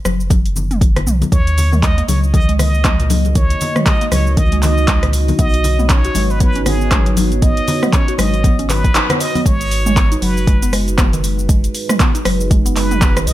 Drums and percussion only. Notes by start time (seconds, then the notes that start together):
0.05 cross-stick, high conga, shaker
0.20 shaker
0.30 kick, closed hi-hat, high conga, shaker
0.46 closed hi-hat, shaker
0.56 high conga, low conga, shaker
0.71 closed hi-hat, mid tom, shaker
0.81 kick, closed hi-hat, high conga, shaker
0.96 cross-stick, closed hi-hat, low conga, shaker
1.07 mid tom, shaker
1.21 closed hi-hat, high conga, low conga, shaker
1.32 kick, closed hi-hat, shaker
1.47 closed hi-hat, shaker
1.58 open hi-hat, low conga, shaker
1.73 mid tom, shaker
1.83 kick, clap, closed hi-hat, shaker
1.98 closed hi-hat, shaker
2.08 open hi-hat, high conga, shaker
2.24 shaker
2.34 kick, closed hi-hat, high conga, shaker
2.49 closed hi-hat, shaker
2.59 cross-stick, open hi-hat, low conga, shaker
2.74 shaker
2.85 kick, cross-stick, clap, closed hi-hat, mid tom, shaker
3.00 closed hi-hat, shaker
3.10 open hi-hat, high conga, shaker
3.25 closed hi-hat, high conga, shaker
3.35 kick, closed hi-hat, shaker
3.50 closed hi-hat, shaker
3.61 open hi-hat, low conga, shaker
3.76 cross-stick, mid tom, shaker
3.86 kick, clap, closed hi-hat, shaker
4.01 closed hi-hat, shaker
4.12 cross-stick, open hi-hat, high conga, shaker
4.27 shaker
4.37 kick, closed hi-hat, high conga, shaker
4.52 closed hi-hat, shaker
4.62 clap, open hi-hat, high conga, low conga, shaker
4.78 shaker
4.88 kick, clap, closed hi-hat, high conga, shaker
5.03 cross-stick, closed hi-hat, low conga, shaker
5.13 open hi-hat, shaker
5.28 open hi-hat, high conga, low conga, shaker
5.39 kick, closed hi-hat, shaker
5.54 closed hi-hat, shaker
5.64 open hi-hat, low conga, shaker
5.79 mid tom, shaker
5.90 kick, clap, closed hi-hat, shaker
6.05 closed hi-hat, shaker
6.15 open hi-hat, high conga, shaker
6.30 shaker
6.40 kick, closed hi-hat, high conga, shaker
6.55 closed hi-hat, shaker
6.66 cross-stick, open hi-hat, low conga, shaker
6.81 shaker
6.91 kick, cross-stick, clap, closed hi-hat, mid tom, shaker
7.06 closed hi-hat, shaker
7.17 open hi-hat, high conga, shaker
7.32 closed hi-hat, high conga, shaker
7.42 kick, closed hi-hat, shaker
7.57 closed hi-hat, shaker
7.68 open hi-hat, low conga, shaker
7.83 cross-stick, mid tom, shaker
7.93 kick, clap, closed hi-hat, shaker
8.08 closed hi-hat, shaker
8.18 cross-stick, open hi-hat, high conga, shaker
8.34 closed hi-hat, shaker
8.44 kick, closed hi-hat, high conga, shaker
8.59 closed hi-hat, shaker
8.69 clap, open hi-hat, high conga, low conga, shaker
8.84 kick, closed hi-hat, shaker
8.95 clap, closed hi-hat, high conga, shaker
9.10 cross-stick, closed hi-hat, low conga, shaker
9.20 open hi-hat, shaker
9.35 open hi-hat, high conga, low conga, shaker
9.46 kick, closed hi-hat, shaker
9.61 closed hi-hat, shaker
9.71 open hi-hat, shaker
9.86 mid tom, shaker
9.97 kick, clap, closed hi-hat, shaker
10.12 closed hi-hat, shaker
10.22 open hi-hat, shaker
10.37 shaker
10.47 kick, closed hi-hat, shaker
10.62 closed hi-hat, shaker
10.73 cross-stick, open hi-hat, shaker
10.88 closed hi-hat, shaker
10.98 kick, cross-stick, clap, closed hi-hat, mid tom, shaker
11.13 closed hi-hat, shaker
11.24 open hi-hat, shaker
11.39 shaker
11.49 kick, closed hi-hat, shaker
11.64 closed hi-hat, shaker
11.75 open hi-hat, shaker
11.89 cross-stick, mid tom, shaker
12.00 kick, clap, closed hi-hat, shaker
12.15 closed hi-hat, shaker
12.25 cross-stick, open hi-hat, shaker
12.40 shaker
12.51 kick, closed hi-hat, shaker
12.66 closed hi-hat, shaker
12.76 clap, open hi-hat, shaker
12.91 closed hi-hat, mid tom, shaker
13.02 kick, clap, closed hi-hat, shaker
13.17 cross-stick, closed hi-hat, shaker
13.27 open hi-hat, shaker